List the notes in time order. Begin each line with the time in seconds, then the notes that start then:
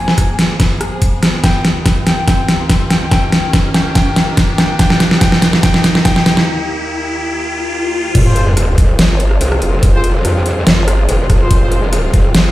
Already playing: F2 F3 C4 G#4 G#5, riser
0.08 snare
0.18 kick, cross-stick, closed hi-hat
0.39 snare, closed hi-hat
0.60 kick, snare, closed hi-hat
0.81 cross-stick, closed hi-hat
1.02 kick, closed hi-hat
1.23 cross-stick, snare, closed hi-hat
1.44 D#2 D#3 A#3 G4 G5, kick, snare, closed hi-hat
1.65 snare, closed hi-hat
1.86 kick, snare, closed hi-hat
2.07 G5, snare, closed hi-hat
2.28 G5, kick, snare, closed hi-hat
2.49 snare, closed hi-hat
2.70 kick, snare, closed hi-hat
2.90 G5, snare, closed hi-hat
3.11 G5, kick, snare, closed hi-hat
3.32 snare, closed hi-hat
3.53 kick, snare, closed hi-hat
3.74 G5, snare, closed hi-hat
3.95 G5, kick, snare, closed hi-hat
4.16 snare, closed hi-hat
4.37 kick, snare, closed hi-hat
4.58 G5, snare, closed hi-hat
4.79 G5, kick, snare, closed hi-hat
4.90 snare
5.00 snare, closed hi-hat
5.11 snare
5.21 G5, kick, snare, closed hi-hat
5.32 snare
5.42 snare, closed hi-hat
5.53 snare
5.63 G5, kick, snare, closed hi-hat
5.74 snare
5.84 snare, closed hi-hat
5.95 snare
6.05 G5, kick, snare, closed hi-hat
6.16 snare
6.26 snare, closed hi-hat
6.37 snare
8.15 F1 G#3 C4 F4, kick, closed hi-hat, crash, sub drop
8.26 F4 G#4 C5
8.36 closed hi-hat
8.57 E1, cross-stick, closed hi-hat
8.78 F1, kick, closed hi-hat
8.99 G1, snare, closed hi-hat
9.20 closed hi-hat
9.31 cross-stick
9.41 C2, closed hi-hat
9.52 cross-stick
9.62 F1, closed hi-hat
9.83 kick, closed hi-hat
9.94 F4 G#4 C5
10.04 closed hi-hat
10.25 F2, cross-stick, closed hi-hat
10.46 closed hi-hat
10.67 G1, snare, closed hi-hat
10.88 cross-stick, closed hi-hat
11.09 F1, closed hi-hat
11.30 F1, kick, cross-stick, closed hi-hat
11.41 F4 G#4 C5
11.51 F1, kick, closed hi-hat
11.62 F4 G#4 C5
11.72 closed hi-hat
11.93 cross-stick, closed hi-hat
12.14 F1, kick, closed hi-hat
12.35 G1, snare, closed hi-hat